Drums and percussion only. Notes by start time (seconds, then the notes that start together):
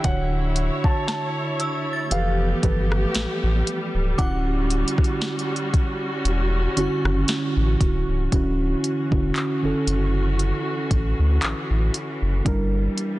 0.04 kick, closed hi-hat
0.56 closed hi-hat
0.84 kick
1.08 snare, closed hi-hat
1.60 closed hi-hat
2.11 closed hi-hat
2.63 kick, closed hi-hat
2.92 cross-stick
3.15 snare, closed hi-hat
3.67 closed hi-hat
4.19 kick, closed hi-hat
4.70 closed hi-hat
4.88 closed hi-hat
4.98 kick, cross-stick
5.04 closed hi-hat
5.21 snare, closed hi-hat
5.39 closed hi-hat
5.56 closed hi-hat
5.74 kick, closed hi-hat
6.25 closed hi-hat
6.77 closed hi-hat
7.05 cross-stick
7.28 snare, closed hi-hat
7.81 kick, closed hi-hat
8.32 kick, closed hi-hat
8.84 closed hi-hat
9.12 kick
9.36 clap, closed hi-hat
9.87 closed hi-hat
10.39 closed hi-hat
10.91 kick, closed hi-hat
11.42 clap, closed hi-hat
11.94 closed hi-hat
12.46 kick, closed hi-hat
12.98 closed hi-hat